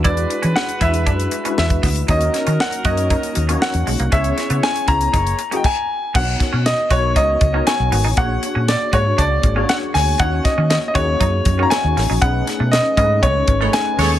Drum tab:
CC |----------------|----------------|------------x---|x---------------|
HH |xxxx-xxxxxxx-xox|xxxx-xxxxxxx-xox|xxxx-xxxxxxx----|--x-x-x-x-x-x-o-|
SD |----o-------o-o-|--o-o-------o---|--o-o-----------|--o-o-------o---|
BD |o-----o-o----oo-|o-----o-o-------|o-----o-o---o---|o-o---o-o-o-----|

CC |----------------|----------------|----------------|
HH |x-x-x-x-x-x-x-o-|x-x-x-x-x-x-x-o-|x-x-x-x-x-x-x-o-|
SD |----o-------o-o-|--o-o-------o-o-|--o-o-------o-o-|
BD |o-----o-o-o-----|o-o---o-o-o-----|o-----o-o-o-----|